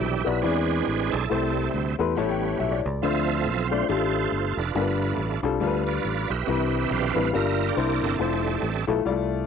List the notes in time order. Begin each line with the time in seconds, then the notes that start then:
Already playing: C3 E3 G3 D4 E4 G4
0.00 B1
0.25 B1 B3 E4 G4 B4 D5
0.41 E2 E3 G#3 C4 D4 E4 G#4 B4 D5
0.87 A1
1.12 B1 E4 A4
1.29 C2 C3 G3 A3 C4 E4 G4 C5
1.74 D2
1.99 E2 A3 E4 G4 B4 C6
2.15 A1 A2 G3 A3 B3 C#4 E4 G4 C#5 A5
2.29 G5
2.60 B1 E5
2.72 D5
2.86 C#2
3.02 D2 D3 F3 A3 C4 D4 F4 A4 C5 E5
3.46 B1
3.71 A3 D4 F4 C5 D5
3.89 A1 A3 D4 F4 G4 A4 C5
4.32 G1
4.57 F1 D4 F4 B4
4.75 G1 G2 G3 A3 B3 D4 F4 A#4
4.82 B4
5.18 A1
5.43 C2 G3 D4 F4 A4
5.60 D2 G3 A3 B3 D4 F4 A4
5.67 B4
5.86 F4 B4 D5
6.05 A1
6.30 B1 G4 B4 E5
6.46 C2 C3 E3 G3 C4 D4 E4 B4
6.91 B1 B4 F5
7.15 A1 G3 C4 E4 B4
7.33 G1 G2 G3 A#3 D4 F4 A#4 E5
7.68 G4 A#4 D5
7.75 C2 C3 A#3 D4 E4 C5
8.02 G1 C4 D4 A4
8.19 F1 G3 A3 E4 F4 C5 E5
8.63 A1
8.87 B1 A3 E4 F4 A4
9.05 C2 G3 E4 F4 D5
9.10 A3